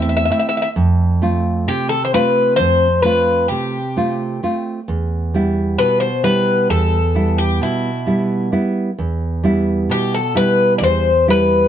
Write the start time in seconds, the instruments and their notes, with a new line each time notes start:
Already playing: nylon-string guitar E2 A3 C4 E4
0.02 bouzouki E5
0.09 bouzouki E5
0.17 bouzouki E5
0.25 bouzouki E5
0.30 nylon-string guitar A3 C4 E4, bouzouki E5
0.40 bouzouki E5
0.49 bouzouki E5
0.57 bouzouki E5
0.62 bouzouki E5
0.76 nylon-string guitar F2
1.22 nylon-string guitar A3 C4 F4
1.68 nylon-string guitar C3, bouzouki G4
1.89 bouzouki A4
2.05 bouzouki C5
2.13 nylon-string guitar A3 C4 F4, bouzouki B4
2.56 nylon-string guitar F2, bouzouki C5
3.02 nylon-string guitar A3 C4 F4, bouzouki B4
3.48 nylon-string guitar C3, bouzouki G4
3.96 nylon-string guitar A3 C4 F4
4.43 nylon-string guitar A3 C4 F4
4.88 nylon-string guitar E2
5.34 nylon-string guitar G3 B3 E4
5.78 nylon-string guitar B2, bouzouki B4
6.00 bouzouki C5
6.24 nylon-string guitar G3 B3 E4, bouzouki B4
6.69 nylon-string guitar E2, bouzouki A4
7.15 nylon-string guitar G3 B3 E4
7.38 bouzouki G4
7.61 nylon-string guitar B2, bouzouki E4
8.07 nylon-string guitar G3 B3 E4
8.52 nylon-string guitar G3 B3 E4
8.99 nylon-string guitar E2
9.44 nylon-string guitar G3 B3 E4
9.90 nylon-string guitar B2, bouzouki G4
10.14 bouzouki A4
10.35 nylon-string guitar G3 E4, bouzouki B4
10.78 nylon-string guitar E2, bouzouki D5
10.84 bouzouki C5
11.28 nylon-string guitar G3 B3 E4, bouzouki B4